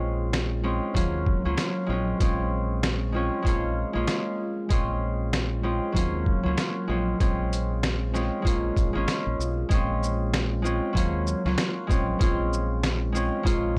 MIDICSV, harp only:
0, 0, Header, 1, 2, 480
1, 0, Start_track
1, 0, Key_signature, -5, "minor"
1, 0, Tempo, 625000
1, 1693, Time_signature, 4, 2, 24, 8
1, 10588, End_track
2, 0, Start_track
2, 0, Title_t, "Harp"
2, 0, Program_c, 0, 46
2, 0, Note_on_c, 0, 56, 93
2, 0, Note_on_c, 0, 60, 86
2, 0, Note_on_c, 0, 61, 84
2, 0, Note_on_c, 0, 65, 99
2, 480, Note_off_c, 0, 56, 0
2, 487, Note_off_c, 0, 61, 0
2, 487, Note_on_c, 0, 56, 89
2, 489, Note_off_c, 0, 60, 0
2, 490, Note_on_c, 0, 61, 83
2, 492, Note_on_c, 0, 60, 85
2, 493, Note_off_c, 0, 65, 0
2, 496, Note_on_c, 0, 65, 98
2, 722, Note_on_c, 0, 54, 86
2, 725, Note_off_c, 0, 61, 0
2, 726, Note_off_c, 0, 65, 0
2, 731, Note_off_c, 0, 60, 0
2, 733, Note_on_c, 0, 58, 88
2, 735, Note_on_c, 0, 65, 98
2, 744, Note_on_c, 0, 61, 85
2, 771, Note_off_c, 0, 56, 0
2, 1082, Note_off_c, 0, 58, 0
2, 1083, Note_off_c, 0, 61, 0
2, 1083, Note_off_c, 0, 65, 0
2, 1107, Note_off_c, 0, 54, 0
2, 1115, Note_on_c, 0, 54, 90
2, 1118, Note_on_c, 0, 61, 81
2, 1119, Note_on_c, 0, 58, 80
2, 1122, Note_on_c, 0, 65, 104
2, 1431, Note_on_c, 0, 56, 91
2, 1445, Note_off_c, 0, 61, 0
2, 1447, Note_off_c, 0, 65, 0
2, 1453, Note_off_c, 0, 58, 0
2, 1453, Note_on_c, 0, 60, 86
2, 1457, Note_on_c, 0, 65, 102
2, 1475, Note_on_c, 0, 61, 83
2, 1491, Note_off_c, 0, 54, 0
2, 1677, Note_off_c, 0, 60, 0
2, 1678, Note_off_c, 0, 61, 0
2, 1679, Note_off_c, 0, 65, 0
2, 1685, Note_off_c, 0, 56, 0
2, 1691, Note_on_c, 0, 56, 94
2, 1695, Note_on_c, 0, 61, 84
2, 1698, Note_on_c, 0, 60, 85
2, 1701, Note_on_c, 0, 65, 106
2, 2396, Note_off_c, 0, 56, 0
2, 2399, Note_on_c, 0, 56, 86
2, 2410, Note_off_c, 0, 60, 0
2, 2413, Note_off_c, 0, 65, 0
2, 2413, Note_on_c, 0, 60, 82
2, 2416, Note_on_c, 0, 65, 93
2, 2424, Note_off_c, 0, 61, 0
2, 2427, Note_on_c, 0, 61, 88
2, 2627, Note_off_c, 0, 56, 0
2, 2630, Note_on_c, 0, 56, 92
2, 2643, Note_off_c, 0, 61, 0
2, 2645, Note_off_c, 0, 65, 0
2, 2651, Note_on_c, 0, 58, 86
2, 2653, Note_off_c, 0, 60, 0
2, 2654, Note_on_c, 0, 65, 106
2, 2672, Note_on_c, 0, 61, 85
2, 3001, Note_off_c, 0, 58, 0
2, 3002, Note_off_c, 0, 61, 0
2, 3002, Note_off_c, 0, 65, 0
2, 3016, Note_off_c, 0, 56, 0
2, 3020, Note_on_c, 0, 56, 96
2, 3034, Note_on_c, 0, 58, 85
2, 3037, Note_on_c, 0, 65, 102
2, 3048, Note_on_c, 0, 61, 87
2, 3348, Note_off_c, 0, 58, 0
2, 3349, Note_off_c, 0, 61, 0
2, 3350, Note_off_c, 0, 65, 0
2, 3597, Note_off_c, 0, 56, 0
2, 3600, Note_on_c, 0, 56, 95
2, 3616, Note_on_c, 0, 60, 85
2, 3619, Note_on_c, 0, 65, 99
2, 3633, Note_on_c, 0, 61, 88
2, 4318, Note_off_c, 0, 56, 0
2, 4325, Note_off_c, 0, 61, 0
2, 4325, Note_on_c, 0, 56, 92
2, 4328, Note_off_c, 0, 60, 0
2, 4328, Note_on_c, 0, 61, 82
2, 4331, Note_off_c, 0, 65, 0
2, 4331, Note_on_c, 0, 60, 84
2, 4334, Note_on_c, 0, 65, 99
2, 4549, Note_on_c, 0, 54, 89
2, 4565, Note_off_c, 0, 61, 0
2, 4566, Note_off_c, 0, 65, 0
2, 4571, Note_off_c, 0, 60, 0
2, 4573, Note_on_c, 0, 58, 86
2, 4576, Note_on_c, 0, 65, 100
2, 4596, Note_on_c, 0, 61, 87
2, 4611, Note_off_c, 0, 56, 0
2, 4922, Note_off_c, 0, 58, 0
2, 4923, Note_off_c, 0, 61, 0
2, 4923, Note_off_c, 0, 65, 0
2, 4937, Note_off_c, 0, 54, 0
2, 4941, Note_on_c, 0, 54, 96
2, 4958, Note_on_c, 0, 58, 81
2, 4960, Note_on_c, 0, 65, 105
2, 4974, Note_on_c, 0, 61, 82
2, 5280, Note_on_c, 0, 56, 90
2, 5284, Note_off_c, 0, 61, 0
2, 5286, Note_off_c, 0, 65, 0
2, 5293, Note_off_c, 0, 58, 0
2, 5293, Note_on_c, 0, 60, 86
2, 5295, Note_on_c, 0, 65, 100
2, 5305, Note_on_c, 0, 61, 87
2, 5331, Note_off_c, 0, 54, 0
2, 5517, Note_off_c, 0, 60, 0
2, 5518, Note_off_c, 0, 61, 0
2, 5518, Note_off_c, 0, 65, 0
2, 5523, Note_off_c, 0, 56, 0
2, 5531, Note_on_c, 0, 56, 93
2, 5534, Note_on_c, 0, 61, 89
2, 5536, Note_on_c, 0, 60, 85
2, 5539, Note_on_c, 0, 65, 103
2, 6241, Note_off_c, 0, 56, 0
2, 6248, Note_on_c, 0, 56, 88
2, 6249, Note_off_c, 0, 61, 0
2, 6251, Note_off_c, 0, 60, 0
2, 6252, Note_on_c, 0, 61, 90
2, 6253, Note_off_c, 0, 65, 0
2, 6254, Note_on_c, 0, 60, 81
2, 6256, Note_on_c, 0, 65, 94
2, 6464, Note_off_c, 0, 56, 0
2, 6468, Note_on_c, 0, 56, 91
2, 6482, Note_off_c, 0, 61, 0
2, 6483, Note_off_c, 0, 65, 0
2, 6490, Note_on_c, 0, 58, 85
2, 6492, Note_off_c, 0, 60, 0
2, 6492, Note_on_c, 0, 65, 108
2, 6512, Note_on_c, 0, 61, 85
2, 6840, Note_off_c, 0, 58, 0
2, 6841, Note_off_c, 0, 61, 0
2, 6842, Note_off_c, 0, 65, 0
2, 6856, Note_off_c, 0, 56, 0
2, 6859, Note_on_c, 0, 56, 92
2, 6874, Note_on_c, 0, 58, 83
2, 6877, Note_on_c, 0, 65, 103
2, 6889, Note_on_c, 0, 61, 85
2, 7188, Note_off_c, 0, 58, 0
2, 7189, Note_off_c, 0, 61, 0
2, 7190, Note_off_c, 0, 65, 0
2, 7436, Note_off_c, 0, 56, 0
2, 7439, Note_on_c, 0, 56, 98
2, 7457, Note_on_c, 0, 60, 88
2, 7459, Note_on_c, 0, 65, 104
2, 7474, Note_on_c, 0, 61, 86
2, 8154, Note_off_c, 0, 56, 0
2, 8157, Note_on_c, 0, 56, 96
2, 8167, Note_off_c, 0, 60, 0
2, 8170, Note_off_c, 0, 65, 0
2, 8170, Note_on_c, 0, 60, 85
2, 8173, Note_on_c, 0, 65, 100
2, 8182, Note_off_c, 0, 61, 0
2, 8185, Note_on_c, 0, 61, 87
2, 8393, Note_on_c, 0, 54, 90
2, 8405, Note_off_c, 0, 61, 0
2, 8406, Note_off_c, 0, 65, 0
2, 8411, Note_off_c, 0, 60, 0
2, 8412, Note_on_c, 0, 58, 90
2, 8415, Note_on_c, 0, 65, 101
2, 8432, Note_on_c, 0, 61, 88
2, 8451, Note_off_c, 0, 56, 0
2, 8762, Note_off_c, 0, 58, 0
2, 8762, Note_off_c, 0, 61, 0
2, 8763, Note_off_c, 0, 65, 0
2, 8788, Note_off_c, 0, 54, 0
2, 8796, Note_on_c, 0, 54, 98
2, 8800, Note_on_c, 0, 58, 83
2, 8800, Note_on_c, 0, 61, 84
2, 8803, Note_on_c, 0, 65, 106
2, 9116, Note_on_c, 0, 56, 95
2, 9128, Note_off_c, 0, 61, 0
2, 9129, Note_off_c, 0, 65, 0
2, 9134, Note_off_c, 0, 58, 0
2, 9136, Note_on_c, 0, 60, 87
2, 9138, Note_on_c, 0, 65, 104
2, 9155, Note_on_c, 0, 61, 86
2, 9171, Note_off_c, 0, 54, 0
2, 9359, Note_off_c, 0, 56, 0
2, 9359, Note_off_c, 0, 60, 0
2, 9359, Note_off_c, 0, 61, 0
2, 9360, Note_off_c, 0, 65, 0
2, 9362, Note_on_c, 0, 56, 94
2, 9378, Note_on_c, 0, 60, 86
2, 9380, Note_on_c, 0, 65, 106
2, 9392, Note_on_c, 0, 61, 93
2, 10076, Note_off_c, 0, 56, 0
2, 10079, Note_on_c, 0, 56, 91
2, 10091, Note_off_c, 0, 60, 0
2, 10094, Note_off_c, 0, 65, 0
2, 10094, Note_on_c, 0, 60, 82
2, 10097, Note_on_c, 0, 65, 100
2, 10106, Note_off_c, 0, 61, 0
2, 10109, Note_on_c, 0, 61, 95
2, 10313, Note_off_c, 0, 56, 0
2, 10316, Note_on_c, 0, 56, 95
2, 10323, Note_off_c, 0, 61, 0
2, 10324, Note_off_c, 0, 65, 0
2, 10330, Note_on_c, 0, 58, 94
2, 10333, Note_off_c, 0, 60, 0
2, 10333, Note_on_c, 0, 65, 115
2, 10345, Note_on_c, 0, 61, 89
2, 10588, Note_off_c, 0, 56, 0
2, 10588, Note_off_c, 0, 58, 0
2, 10588, Note_off_c, 0, 61, 0
2, 10588, Note_off_c, 0, 65, 0
2, 10588, End_track
0, 0, End_of_file